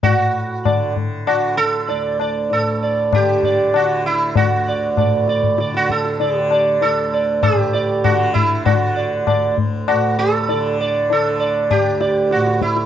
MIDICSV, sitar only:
0, 0, Header, 1, 2, 480
1, 0, Start_track
1, 0, Tempo, 616650
1, 27, Time_signature, 7, 2, 24, 8
1, 5787, Tempo, 610376
1, 10051, End_track
2, 0, Start_track
2, 0, Title_t, "Sitar"
2, 0, Program_c, 0, 104
2, 26, Note_on_c, 0, 66, 84
2, 511, Note_on_c, 0, 74, 29
2, 718, Note_off_c, 0, 66, 0
2, 734, Note_off_c, 0, 74, 0
2, 988, Note_on_c, 0, 66, 70
2, 1221, Note_off_c, 0, 66, 0
2, 1224, Note_on_c, 0, 69, 90
2, 1470, Note_on_c, 0, 74, 35
2, 1677, Note_off_c, 0, 69, 0
2, 1694, Note_off_c, 0, 74, 0
2, 1718, Note_on_c, 0, 74, 31
2, 1939, Note_off_c, 0, 74, 0
2, 1968, Note_on_c, 0, 69, 73
2, 2200, Note_on_c, 0, 74, 29
2, 2420, Note_off_c, 0, 74, 0
2, 2445, Note_off_c, 0, 69, 0
2, 2448, Note_on_c, 0, 67, 75
2, 2681, Note_on_c, 0, 74, 39
2, 2901, Note_off_c, 0, 74, 0
2, 2922, Note_off_c, 0, 67, 0
2, 2925, Note_on_c, 0, 66, 64
2, 3157, Note_off_c, 0, 66, 0
2, 3160, Note_on_c, 0, 64, 67
2, 3380, Note_off_c, 0, 64, 0
2, 3401, Note_on_c, 0, 66, 73
2, 3643, Note_on_c, 0, 74, 33
2, 3861, Note_off_c, 0, 74, 0
2, 3878, Note_on_c, 0, 74, 33
2, 4085, Note_off_c, 0, 66, 0
2, 4098, Note_off_c, 0, 74, 0
2, 4118, Note_on_c, 0, 74, 35
2, 4338, Note_off_c, 0, 74, 0
2, 4360, Note_on_c, 0, 74, 31
2, 4488, Note_on_c, 0, 66, 75
2, 4579, Note_off_c, 0, 74, 0
2, 4591, Note_off_c, 0, 66, 0
2, 4604, Note_on_c, 0, 69, 82
2, 4831, Note_on_c, 0, 74, 37
2, 4962, Note_off_c, 0, 69, 0
2, 4962, Note_on_c, 0, 67, 82
2, 5053, Note_off_c, 0, 74, 0
2, 5074, Note_on_c, 0, 74, 37
2, 5164, Note_off_c, 0, 67, 0
2, 5294, Note_off_c, 0, 74, 0
2, 5310, Note_on_c, 0, 69, 77
2, 5554, Note_on_c, 0, 74, 34
2, 5756, Note_off_c, 0, 69, 0
2, 5773, Note_off_c, 0, 74, 0
2, 5784, Note_on_c, 0, 67, 89
2, 6022, Note_on_c, 0, 74, 38
2, 6248, Note_off_c, 0, 74, 0
2, 6261, Note_off_c, 0, 67, 0
2, 6264, Note_on_c, 0, 66, 72
2, 6495, Note_off_c, 0, 66, 0
2, 6498, Note_on_c, 0, 64, 80
2, 6743, Note_off_c, 0, 64, 0
2, 6746, Note_on_c, 0, 66, 75
2, 6986, Note_on_c, 0, 74, 34
2, 7211, Note_off_c, 0, 74, 0
2, 7233, Note_on_c, 0, 74, 34
2, 7438, Note_off_c, 0, 66, 0
2, 7456, Note_off_c, 0, 74, 0
2, 7709, Note_on_c, 0, 66, 66
2, 7948, Note_off_c, 0, 66, 0
2, 7951, Note_on_c, 0, 69, 84
2, 8191, Note_on_c, 0, 74, 35
2, 8399, Note_off_c, 0, 69, 0
2, 8414, Note_off_c, 0, 74, 0
2, 8438, Note_on_c, 0, 74, 35
2, 8657, Note_off_c, 0, 74, 0
2, 8689, Note_on_c, 0, 69, 77
2, 8903, Note_on_c, 0, 74, 35
2, 9129, Note_off_c, 0, 74, 0
2, 9145, Note_off_c, 0, 69, 0
2, 9148, Note_on_c, 0, 67, 80
2, 9383, Note_on_c, 0, 74, 34
2, 9608, Note_off_c, 0, 74, 0
2, 9628, Note_off_c, 0, 67, 0
2, 9631, Note_on_c, 0, 66, 74
2, 9864, Note_off_c, 0, 66, 0
2, 9867, Note_on_c, 0, 64, 64
2, 10051, Note_off_c, 0, 64, 0
2, 10051, End_track
0, 0, End_of_file